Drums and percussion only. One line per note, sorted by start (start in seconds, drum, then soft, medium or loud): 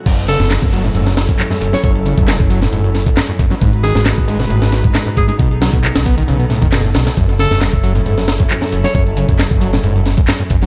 0.06 kick loud
0.06 closed hi-hat medium
0.06 closed hi-hat soft
0.06 crash medium
0.18 closed hi-hat soft
0.28 snare soft
0.28 closed hi-hat medium
0.40 snare medium
0.40 closed hi-hat soft
0.51 snare loud
0.51 clap loud
0.51 closed hi-hat medium
0.51 closed hi-hat soft
0.62 kick loud
0.73 closed hi-hat medium
0.85 closed hi-hat soft
0.95 closed hi-hat medium
0.95 closed hi-hat soft
1.07 snare medium
1.17 snare loud
1.17 closed hi-hat medium
1.29 kick medium
1.29 closed hi-hat soft
1.39 clap loud
1.39 closed hi-hat medium
1.39 closed hi-hat soft
1.51 snare soft
1.61 closed hi-hat medium
1.73 snare soft
1.73 closed hi-hat soft
1.84 kick loud
1.84 closed hi-hat medium
1.84 closed hi-hat soft
1.96 closed hi-hat soft
2.06 closed hi-hat medium
2.18 kick loud
2.18 closed hi-hat soft
2.28 snare loud
2.28 clap loud
2.28 closed hi-hat medium
2.28 closed hi-hat soft
2.40 kick loud
2.50 closed hi-hat medium
2.62 snare soft
2.62 closed hi-hat soft
2.73 closed hi-hat soft
2.73 closed hi-hat medium
2.84 closed hi-hat soft
2.95 snare soft
2.95 closed hi-hat medium
2.95 open hi-hat medium
3.06 kick loud
3.06 closed hi-hat soft
3.17 snare loud
3.17 clap loud
3.17 closed hi-hat medium
3.17 closed hi-hat soft
3.39 kick loud
3.39 closed hi-hat medium
3.51 closed hi-hat soft
3.61 kick loud
3.61 closed hi-hat medium
3.61 closed hi-hat soft
3.73 closed hi-hat soft
3.84 snare soft
3.84 closed hi-hat medium
3.95 snare medium
3.95 closed hi-hat soft
4.06 snare loud
4.06 clap loud
4.06 closed hi-hat medium
4.06 closed hi-hat soft
4.18 kick medium
4.28 closed hi-hat medium
4.40 snare soft
4.40 closed hi-hat soft
4.50 closed hi-hat soft
4.50 closed hi-hat medium
4.62 snare medium
4.72 snare soft
4.72 closed hi-hat medium
4.84 kick loud
4.84 closed hi-hat soft
4.95 snare loud
4.95 clap loud
4.95 closed hi-hat soft
4.95 closed hi-hat medium
5.06 closed hi-hat soft
5.17 kick loud
5.17 closed hi-hat medium
5.29 closed hi-hat soft
5.39 kick loud
5.39 closed hi-hat soft
5.39 closed hi-hat medium
5.51 closed hi-hat soft
5.62 snare loud
5.62 closed hi-hat medium
5.73 kick medium
5.73 closed hi-hat soft
5.84 clap loud
5.84 closed hi-hat medium
5.84 closed hi-hat soft
5.95 snare loud
5.95 closed hi-hat medium
6.06 kick medium
6.06 closed hi-hat medium
6.18 closed hi-hat medium
6.18 closed hi-hat soft
6.28 closed hi-hat medium
6.28 closed hi-hat soft
6.40 closed hi-hat soft
6.50 snare soft
6.50 closed hi-hat medium
6.50 open hi-hat medium
6.62 kick loud
6.62 closed hi-hat soft
6.72 snare loud
6.72 clap loud
6.72 closed hi-hat soft
6.72 closed hi-hat medium
6.94 snare loud
6.94 closed hi-hat medium
7.06 snare loud
7.06 closed hi-hat soft
7.06 closed hi-hat medium
7.17 kick loud
7.17 closed hi-hat soft
7.17 closed hi-hat medium
7.29 closed hi-hat soft
7.39 snare soft
7.39 closed hi-hat medium
7.51 snare medium
7.51 closed hi-hat soft
7.62 snare loud
7.62 clap loud
7.62 closed hi-hat medium
7.62 closed hi-hat soft
7.73 kick medium
7.84 closed hi-hat medium
7.95 closed hi-hat soft
8.06 closed hi-hat medium
8.06 closed hi-hat soft
8.18 snare medium
8.28 snare loud
8.28 closed hi-hat medium
8.40 kick medium
8.40 closed hi-hat soft
8.50 clap loud
8.50 closed hi-hat medium
8.50 closed hi-hat soft
8.62 snare soft
8.72 closed hi-hat medium
8.84 snare soft
8.84 closed hi-hat soft
8.95 kick loud
8.95 closed hi-hat soft
8.95 closed hi-hat medium
9.07 closed hi-hat soft
9.17 closed hi-hat medium
9.28 kick medium
9.28 closed hi-hat soft
9.39 snare loud
9.39 clap loud
9.39 closed hi-hat soft
9.39 closed hi-hat medium
9.51 kick medium
9.61 closed hi-hat medium
9.73 snare soft
9.73 closed hi-hat soft
9.84 closed hi-hat soft
9.84 closed hi-hat medium
9.96 closed hi-hat soft
10.06 snare soft
10.06 closed hi-hat medium
10.06 open hi-hat medium
10.17 kick loud
10.17 closed hi-hat soft
10.28 snare loud
10.28 clap loud
10.28 closed hi-hat soft
10.28 closed hi-hat medium
10.50 kick loud
10.50 closed hi-hat medium
10.62 closed hi-hat soft